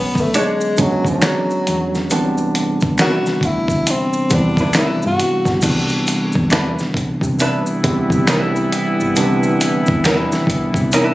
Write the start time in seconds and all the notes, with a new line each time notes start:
Already playing: B1 D3 F#3 G#3 B3 C#4
0.15 kick, maracas
0.21 A3
0.34 G#3 D4 G#4 C#5, closed hi-hat, maracas
0.61 maracas
0.77 C#2 F#3 G#3 B3 C#4 D4, kick, closed hi-hat, maracas
0.81 F#3
1.05 kick, maracas
1.09 F#3
1.22 D4 G#4 C#5, finger snap, snare, closed hi-hat, maracas
1.50 maracas
1.67 E2, closed hi-hat
1.95 snare, maracas
2.10 C2 C3 E3 G3 B3 D4, closed hi-hat, maracas
2.38 maracas
2.55 closed hi-hat
2.81 kick, maracas
2.98 D4 E4 F#4 B4, finger snap, snare, closed hi-hat, maracas
3.26 snare, maracas
3.41 D2, kick, closed hi-hat
3.46 E4
3.68 kick, maracas
3.87 C4, closed hi-hat, maracas
4.13 maracas
4.30 E2 C3 E3 G3 B3 D4, kick, closed hi-hat, maracas
4.34 D4 E4
4.57 E4 B4, kick, maracas
4.62 D4
4.73 D4 E4 B4, finger snap, muted fingered electric bass stroke, snare, closed hi-hat, maracas
4.78 E4
5.02 G2, maracas
5.07 F#4
5.19 closed hi-hat
5.45 G1, kick, snare, maracas
5.61 C2 C3 E3 G3 B3 D4, kick, closed hi-hat, crash, maracas
5.89 maracas
6.07 closed hi-hat, maracas
6.32 kick, maracas
6.37 E2
6.50 D4 E4 B4, finger snap, snare, closed hi-hat, maracas
6.79 snare, maracas
6.94 C2, kick, closed hi-hat
7.21 C3, kick, maracas
7.39 E3 G3 B3 D4 E4 B4, closed hi-hat, maracas
7.66 maracas
7.83 D2 C3 E3 G3 B3 E4, kick, closed hi-hat
8.10 C3, kick, maracas
8.27 C2 D4 E4 B4, finger snap, snare, closed hi-hat, maracas
8.56 maracas
8.72 closed hi-hat
9.00 G1, maracas
9.16 C2 C3 D3 G3 B3 D4, closed hi-hat, maracas
9.23 E3
9.43 maracas
9.61 closed hi-hat, maracas
9.86 E2, kick, maracas
10.04 D4 E4 B4, finger snap, snare, closed hi-hat, maracas
10.32 snare, maracas
10.47 C2, kick, closed hi-hat
10.74 C3, kick, maracas
10.92 D4 E4 B4, closed hi-hat, maracas